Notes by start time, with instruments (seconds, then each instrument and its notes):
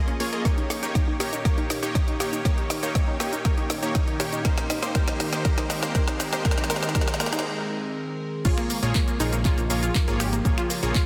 Already playing: ambient pad F3 A#3 C#4 G#4 C#5, supersaw synth A#3 F4 G#4 D#5
0.08 synth pluck C#4, closed hi-hat
0.20 supersaw synth A#3 F4 G#4 C#5, synth pluck A#3, open hi-hat
0.33 supersaw synth A#3 F4 G#4 D#5, synth pluck A#3, closed hi-hat
0.45 ambient pad A#2 D#3 G4, supersaw synth A#3, synth pluck A#4, kick, snare, closed hi-hat, shaker
0.58 synth pluck D#4, closed hi-hat
0.70 synth pluck D#4, snare, open hi-hat, shaker
0.83 supersaw synth A#3 D#4 G4 C#5, closed hi-hat, shaker
0.95 synth pluck D#4, kick, snare, closed hi-hat, shaker
1.08 synth pluck D#4
1.20 supersaw synth A#3 D#4 G4 C#5, synth pluck G4, snare, open hi-hat, shaker
1.33 synth pluck D#4, closed hi-hat, shaker
1.45 supersaw synth A#3 D#4 G4, synth pluck A#4, kick, snare, closed hi-hat, shaker
1.58 synth pluck D#4, closed hi-hat
1.70 synth pluck D#4, snare, open hi-hat, shaker
1.83 supersaw synth A#3 D#4 G4 C#5, closed hi-hat, shaker
1.95 synth pluck D#4, kick, snare, closed hi-hat, shaker
2.08 synth pluck D#4, closed hi-hat
2.20 supersaw synth A#3 D#4 G4 C#5, synth pluck G4, snare, open hi-hat, shaker
2.33 synth pluck D#4, closed hi-hat, shaker
2.45 supersaw synth A#3 D#4 G4 C#5, synth pluck A#4, ambient pad A#4, kick, snare, closed hi-hat, shaker
2.58 synth pluck D#4, closed hi-hat
2.70 synth pluck D#4, snare, open hi-hat, shaker
2.83 supersaw synth A#3 D#4 G4 C#5, closed hi-hat, shaker
2.95 synth pluck D#4, kick, snare, closed hi-hat, shaker
3.08 synth pluck D#4
3.20 supersaw synth A#3 D#4 G4 C#5, synth pluck G4, snare, open hi-hat, shaker
3.33 synth pluck D#4, closed hi-hat, shaker
3.45 supersaw synth A#3 D#4 G4 C#5, synth pluck A#4, kick, snare, closed hi-hat, shaker
3.58 synth pluck D#4, closed hi-hat
3.70 synth pluck D#4, snare, open hi-hat, shaker
3.83 supersaw synth A#3 D#4 G4 C#5, closed hi-hat, shaker
3.95 synth pluck D#4, kick, snare, closed hi-hat, shaker
4.08 synth pluck D#4, closed hi-hat
4.20 supersaw synth A#3 D#4 G4 C#5, synth pluck G4, snare, open hi-hat, shaker
4.33 synth pluck D#4, closed hi-hat, shaker
4.45 ambient pad G#3 C4 G4, supersaw synth A#3 D#4 G4 C5, synth pluck A#4, kick, snare, closed hi-hat, shaker
4.58 synth pluck D#4, snare, closed hi-hat
4.70 synth pluck D#4, snare, open hi-hat, shaker
4.82 supersaw synth A#3 D#4 G4 C5, snare, closed hi-hat, shaker
4.95 supersaw synth A#3 D#4 G4 C5, synth pluck A#4, kick, snare, closed hi-hat, shaker
5.08 synth pluck D#4, snare
5.20 synth pluck D#4, snare, open hi-hat, shaker
5.32 supersaw synth A#3 D#4 G4 C5, snare, closed hi-hat, shaker
5.45 supersaw synth A#3 D#4 G4 C5, synth pluck A#4, kick, snare, closed hi-hat, shaker
5.58 synth pluck D#4, snare, closed hi-hat
5.70 synth pluck D#4, snare, open hi-hat, shaker
5.83 supersaw synth A#3 D#4 G4 C5, snare, closed hi-hat, shaker
5.95 supersaw synth A#3 G4 C5, synth pluck A#4, kick, snare, closed hi-hat, shaker
6.08 synth pluck D#4, snare, closed hi-hat
6.20 synth pluck D#4, snare, open hi-hat, shaker
6.33 supersaw synth A#3 D#4 G4 C5, snare, closed hi-hat, shaker
6.45 supersaw synth A#3 D#4 G4 C5, ambient pad G#4, synth pluck A#4, kick, snare, closed hi-hat, shaker
6.51 snare
6.58 synth pluck D#4, snare, closed hi-hat
6.64 snare
6.70 supersaw synth A#3 D#4 G4 C5, synth pluck A#4, snare, open hi-hat, shaker
6.76 snare
6.83 synth pluck D#4, snare, closed hi-hat, shaker
6.89 snare
6.95 supersaw synth A#3 D#4 G4 C5, synth pluck A#4, kick, snare, closed hi-hat, shaker
7.01 snare
7.08 synth pluck D#4, snare, closed hi-hat
7.14 snare
7.20 supersaw synth A#3 D#4 G4 C5, synth pluck A#4, snare, open hi-hat, shaker
7.26 snare
7.33 synth pluck D#4, snare, closed hi-hat, shaker
7.39 snare
8.45 analog synth bass A#1, ambient pad C#3 F3 G#3 A#3 F4, supersaw synth A#3 F4 G#4 C#5, synth pluck F4, kick, closed hi-hat, crash, shaker
8.58 synth pluck A#3, finger snap, closed hi-hat, shaker
8.70 synth pluck A#3, open hi-hat, shaker
8.83 analog synth bass A#1, supersaw synth A#3 F4 G#4 C#5, closed hi-hat, shaker
8.95 synth pluck A#3, kick, clap, closed hi-hat, shaker
9.08 synth pluck A#3, closed hi-hat, shaker
9.20 analog synth bass A#1, supersaw synth A#3 F4 G#4 C#5, synth pluck D#4, open hi-hat, shaker
9.33 synth pluck A#3, closed hi-hat, shaker
9.45 supersaw synth A#3 F4 G#4 C#5, synth pluck F4, kick, clap, closed hi-hat, shaker
9.58 analog synth bass A#1, synth pluck A#3, closed hi-hat, shaker
9.70 supersaw synth A#3 F4 G#4 C#5, synth pluck A#3, open hi-hat, shaker
9.83 synth pluck F4, closed hi-hat, shaker
9.95 synth pluck A#3, kick, clap, closed hi-hat, shaker
10.08 analog synth bass G#1, supersaw synth A#3 F4 G#4 C#5, synth pluck A#3, closed hi-hat, shaker
10.20 synth pluck G4, finger snap, open hi-hat, shaker
10.33 synth pluck A#3, closed hi-hat, shaker
10.45 analog synth bass A#1, supersaw synth A#3 F4 G#4 C#5, synth pluck A#3, kick, closed hi-hat, shaker
10.58 synth pluck F4, finger snap, closed hi-hat, shaker
10.70 synth pluck A#3, open hi-hat, shaker
10.83 analog synth bass A#1, supersaw synth A#3 F4 G#4 C#5, synth pluck A#3, closed hi-hat, shaker
10.95 synth pluck F4, kick, clap, closed hi-hat, shaker